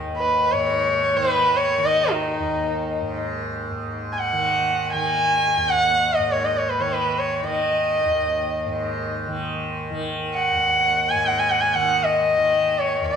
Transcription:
Already playing: D#2 G#2 D#3
0.17 B4
0.52 G#2 C#5
1.15 D#3 B4
1.56 C#5
1.78 D#3
1.86 D#5
2.12 D#4
2.39 D#2
3.01 G#2
3.70 G#2
4.12 G#5
4.19 F#5
4.32 D#3
4.92 D#3 G#5
5.56 D#2
5.69 F#5
6.15 G#2 D#5
6.31 C#5
6.44 D#5
6.58 C#5
6.69 B4
6.79 D#3 C#5
6.93 B4
7.19 C#5
7.42 D#3 D#5
8.04 D#2
8.65 G#2
9.27 D#3
9.90 D#3
10.34 F#5
10.52 D#2
11.09 G#2 G#5
11.26 F#5
11.39 G#5
11.50 F#5
11.61 G#5
11.74 D#3 F#5
12.04 D#5
12.36 D#3
12.80 C#5
13.00 D#2
13.05 D#5

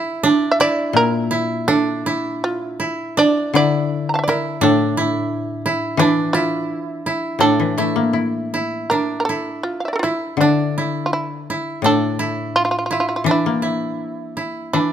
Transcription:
Already playing: D4 E4
0.23 D4
0.51 E5
0.60 E4 D5
0.93 A#2 A#4
1.31 E4
1.68 D4 A4
2.06 E4
2.44 F4
2.80 E4
3.17 D4 D5
3.54 D3 E4 D5
4.09 A#5
4.14 F5 A5
4.19 E5
4.24 D5
4.28 E4 A#4
4.61 A2 D4 A4
4.97 E4
5.66 E4
5.97 E3 D4 E4
6.33 E4 F4
7.06 E4
7.39 A2 D4 A4
7.60 E3
7.78 A3 E4
7.96 A#3
8.13 E4
8.54 E4
8.90 D4 A#4
9.20 A#4
9.25 A4
9.29 E4
9.63 F4
9.80 F5
9.85 D5 E5
9.93 A4 A#4
9.99 E4 F4
10.04 E4
10.37 D3 D4
10.41 D4
10.78 E4
11.06 F4
11.13 E4
11.50 E4
11.82 A2 D4 A4
12.19 E4
12.56 F4
12.65 F4
12.71 F4
12.79 F4
12.86 F4
12.91 E4 F4
13.00 F4
13.09 F4
13.16 F4
13.24 E3 D4
13.31 E4
13.46 A#3
13.62 E4
14.37 E4
14.73 E3 D4 E4

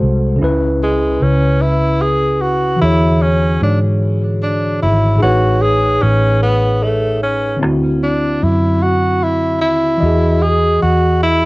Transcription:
Already playing: G#3 F#4 A4 C5
0.02 C2
0.36 C#3 C#4
0.41 C#2 E4 B4
0.83 G#3
1.22 C#2 C#4
1.62 E4
2.02 G#4
2.41 F#4
2.76 D3 E3 F#4
2.81 E2 E4 G#4 C#5
3.22 C#4
3.62 G#2 D4
4.43 D4
4.83 G#1 E4
5.16 A2 D#4 G#4
5.22 A1 F#4 B4 C#5
5.62 G#4
6.02 A1 C#4
6.43 B3
6.83 A3
7.23 C#4
7.57 D3 C4
7.61 D2 E4 F#4
8.03 D4
8.43 F#2 E4
8.82 F#4
9.23 E4
9.61 D#2 E4
9.98 E3 D#5
10.02 E2 F#4 G#4
10.42 G#4
10.82 E2 F#4
11.23 E4

